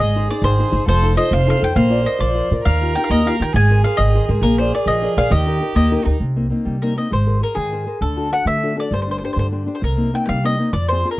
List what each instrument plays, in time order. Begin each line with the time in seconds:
0.00 upright bass G#1, nylon-string guitar G#3, violin G#4, mandolin D#5
0.16 nylon-string guitar D#4 G#4 C5
0.31 nylon-string guitar D#4 G#4 C5, mandolin D5
0.42 upright bass G#1, nylon-string guitar D#3, mandolin C5
0.59 nylon-string guitar D#4 G#4 C5
0.71 upright bass G1, nylon-string guitar D#4 G#4 C5
0.86 upright bass F1, nylon-string guitar F3, violin A4, mandolin C5
1.02 nylon-string guitar D#4 F4 A4
1.17 nylon-string guitar F4 A4, violin C5, mandolin D#5
1.31 upright bass F1, nylon-string guitar C3, mandolin F5
1.47 nylon-string guitar D#4 F4 A4, mandolin F5
1.59 upright bass F2, nylon-string guitar D#4 F4 A4
1.64 mandolin G5
1.75 upright bass A#1, nylon-string guitar A#3, violin C5, mandolin F5
1.90 nylon-string guitar F4 A#4 D5
2.03 nylon-string guitar F4 A#4 D5, mandolin D#5
2.19 upright bass A#1, nylon-string guitar F3, mandolin D5
2.35 nylon-string guitar F4 A#4 D5
2.51 upright bass A#2, nylon-string guitar F4 A#4 D5
2.63 upright bass D#2, nylon-string guitar D#3, violin A#4, mandolin F5
2.81 nylon-string guitar D#4 F4 G4
2.95 nylon-string guitar D#4 F4 G4, mandolin G5
3.04 mandolin F5
3.10 upright bass D#2, nylon-string guitar A#3, mandolin D#5
3.26 nylon-string guitar D#4 F4 G4, mandolin F5
3.39 upright bass D#3, nylon-string guitar D#4 F4 G4, mandolin G5
3.53 upright bass G#1, nylon-string guitar G#3, violin G#4, mandolin G#5
3.70 nylon-string guitar G#4 A#4 C5
3.84 nylon-string guitar G#4 A#4 C5, mandolin F5
3.97 upright bass G#1, nylon-string guitar D#3, mandolin D#5
4.14 nylon-string guitar G#4 A#4 C5
4.29 upright bass G#2, nylon-string guitar G#4 A#4 C5
4.40 upright bass A#1, nylon-string guitar A#3, violin G#4, mandolin A#4
4.58 nylon-string guitar G#4 A#4 D5, mandolin C5
4.74 nylon-string guitar G#4 A#4 D5, mandolin D5
4.86 upright bass A#1, nylon-string guitar F3, mandolin D#5
5.02 nylon-string guitar G#4 A#4 D5
5.17 upright bass A#1, nylon-string guitar G#4 A#4 D5, mandolin F5
5.30 upright bass D#2, nylon-string guitar D#3, violin G4, mandolin D#5
5.46 nylon-string guitar D#4 G4 A#4
5.61 nylon-string guitar D#4 G4 A#4
5.75 upright bass D#2, nylon-string guitar A#3, mandolin D#5
5.91 nylon-string guitar D#4 G4 A#4
6.04 upright bass D2, nylon-string guitar D#4 G4 A#4, violin D#4
6.20 upright bass C2, nylon-string guitar C3
6.36 nylon-string guitar A#3 C4 D#4
6.50 nylon-string guitar A#3 C4 D#4
6.65 upright bass C3, nylon-string guitar G3
6.82 nylon-string guitar A#3 C4 D#4, mandolin A#4
6.96 nylon-string guitar A#3 C4 D#4, mandolin D#5
7.11 upright bass G#1, nylon-string guitar G#3, mandolin C5
7.27 nylon-string guitar G#4 A#4 C5
7.41 nylon-string guitar G#4 A#4 C5, mandolin A#4
7.55 upright bass G#2, nylon-string guitar D#3, mandolin G#4
7.72 nylon-string guitar G#4 A#4 C5
7.86 nylon-string guitar G#4 A#4 C5
8.01 upright bass D2, nylon-string guitar D3, mandolin A4
8.17 nylon-string guitar D4 F#4 A4
8.32 nylon-string guitar F#4 A4, mandolin F#5
8.45 upright bass D3, nylon-string guitar A3, mandolin E5
8.63 nylon-string guitar D4 F#4 A4
8.76 nylon-string guitar D4 F#4 A4, mandolin D5
8.91 upright bass G1, nylon-string guitar G3, mandolin C5
9.02 mandolin C5
9.07 nylon-string guitar D4 G4 C5, mandolin C5
9.18 mandolin C5
9.24 nylon-string guitar D4 G4 C5, mandolin C5
9.33 upright bass G2, mandolin C5
9.37 nylon-string guitar D3, mandolin C5
9.52 nylon-string guitar D4 G4 C5
9.66 nylon-string guitar D4 G4 C5
9.75 mandolin C5
9.81 upright bass C2, nylon-string guitar C3, mandolin A#4
9.97 nylon-string guitar A#3 C4 D#4
10.13 nylon-string guitar A#3 C4 D#4, mandolin G5
10.26 upright bass C3, nylon-string guitar G3, mandolin F5 G5
10.43 nylon-string guitar A#3 C4 D#4, mandolin D#5
10.58 nylon-string guitar A#3 C4 D#4
10.73 upright bass F2, nylon-string guitar F3, mandolin D5
10.88 nylon-string guitar C4 F4 G#4, mandolin C5
11.04 nylon-string guitar C4 F4 G#4
11.11 mandolin A#4